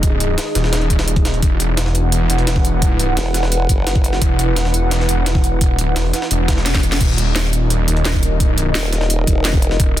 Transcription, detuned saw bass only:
0, 0, Header, 1, 2, 480
1, 0, Start_track
1, 0, Tempo, 348837
1, 41, Time_signature, 4, 2, 24, 8
1, 13760, End_track
2, 0, Start_track
2, 0, Title_t, "Detuned saw bass"
2, 0, Program_c, 0, 39
2, 0, Note_on_c, 0, 27, 95
2, 501, Note_off_c, 0, 27, 0
2, 760, Note_on_c, 0, 27, 94
2, 1461, Note_off_c, 0, 27, 0
2, 1480, Note_on_c, 0, 27, 94
2, 1941, Note_off_c, 0, 27, 0
2, 1961, Note_on_c, 0, 28, 95
2, 3142, Note_off_c, 0, 28, 0
2, 3160, Note_on_c, 0, 28, 98
2, 4341, Note_off_c, 0, 28, 0
2, 5801, Note_on_c, 0, 28, 99
2, 6982, Note_off_c, 0, 28, 0
2, 7001, Note_on_c, 0, 28, 96
2, 7840, Note_off_c, 0, 28, 0
2, 7840, Note_on_c, 0, 27, 96
2, 8182, Note_off_c, 0, 27, 0
2, 8201, Note_on_c, 0, 28, 96
2, 8422, Note_off_c, 0, 28, 0
2, 8680, Note_on_c, 0, 28, 95
2, 9381, Note_off_c, 0, 28, 0
2, 9400, Note_on_c, 0, 28, 92
2, 9621, Note_off_c, 0, 28, 0
2, 9641, Note_on_c, 0, 27, 97
2, 10822, Note_off_c, 0, 27, 0
2, 10840, Note_on_c, 0, 27, 98
2, 12021, Note_off_c, 0, 27, 0
2, 13481, Note_on_c, 0, 27, 98
2, 13760, Note_off_c, 0, 27, 0
2, 13760, End_track
0, 0, End_of_file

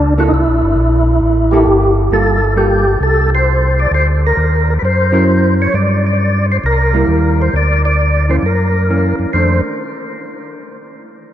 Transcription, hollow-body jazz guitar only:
0, 0, Header, 1, 2, 480
1, 0, Start_track
1, 0, Tempo, 450450
1, 340, Time_signature, 4, 2, 24, 8
1, 12078, End_track
2, 0, Start_track
2, 0, Title_t, "Hollow-body jazz guitar"
2, 0, Program_c, 0, 26
2, 192, Note_on_c, 0, 58, 80
2, 199, Note_on_c, 0, 64, 74
2, 206, Note_on_c, 0, 69, 84
2, 329, Note_off_c, 0, 58, 0
2, 332, Note_off_c, 0, 64, 0
2, 336, Note_off_c, 0, 69, 0
2, 1624, Note_on_c, 0, 58, 78
2, 1631, Note_on_c, 0, 64, 78
2, 1638, Note_on_c, 0, 69, 78
2, 2226, Note_off_c, 0, 58, 0
2, 2229, Note_off_c, 0, 64, 0
2, 2232, Note_off_c, 0, 69, 0
2, 2260, Note_on_c, 0, 55, 52
2, 2263, Note_on_c, 0, 58, 57
2, 2269, Note_on_c, 0, 65, 62
2, 2273, Note_on_c, 0, 69, 64
2, 2546, Note_off_c, 0, 55, 0
2, 2548, Note_off_c, 0, 58, 0
2, 2551, Note_off_c, 0, 65, 0
2, 2553, Note_off_c, 0, 69, 0
2, 2727, Note_on_c, 0, 55, 49
2, 2738, Note_on_c, 0, 58, 56
2, 2739, Note_on_c, 0, 69, 62
2, 2745, Note_on_c, 0, 65, 58
2, 3019, Note_off_c, 0, 55, 0
2, 3025, Note_off_c, 0, 58, 0
2, 3026, Note_off_c, 0, 69, 0
2, 3028, Note_off_c, 0, 65, 0
2, 5456, Note_on_c, 0, 54, 73
2, 5461, Note_on_c, 0, 61, 77
2, 5471, Note_on_c, 0, 64, 78
2, 5472, Note_on_c, 0, 70, 87
2, 6061, Note_off_c, 0, 54, 0
2, 6064, Note_off_c, 0, 61, 0
2, 6069, Note_off_c, 0, 64, 0
2, 6069, Note_off_c, 0, 70, 0
2, 7388, Note_on_c, 0, 55, 67
2, 7396, Note_on_c, 0, 58, 62
2, 7402, Note_on_c, 0, 64, 66
2, 7989, Note_off_c, 0, 55, 0
2, 7993, Note_off_c, 0, 58, 0
2, 7996, Note_off_c, 0, 64, 0
2, 8833, Note_on_c, 0, 52, 59
2, 8843, Note_on_c, 0, 58, 59
2, 8843, Note_on_c, 0, 61, 60
2, 8968, Note_off_c, 0, 52, 0
2, 8972, Note_off_c, 0, 58, 0
2, 8973, Note_off_c, 0, 61, 0
2, 9479, Note_on_c, 0, 52, 53
2, 9487, Note_on_c, 0, 58, 47
2, 9488, Note_on_c, 0, 61, 53
2, 9949, Note_off_c, 0, 52, 0
2, 9953, Note_off_c, 0, 58, 0
2, 9953, Note_off_c, 0, 61, 0
2, 9959, Note_on_c, 0, 51, 55
2, 9965, Note_on_c, 0, 57, 57
2, 9969, Note_on_c, 0, 62, 62
2, 10239, Note_off_c, 0, 51, 0
2, 10242, Note_off_c, 0, 57, 0
2, 10244, Note_off_c, 0, 62, 0
2, 12078, End_track
0, 0, End_of_file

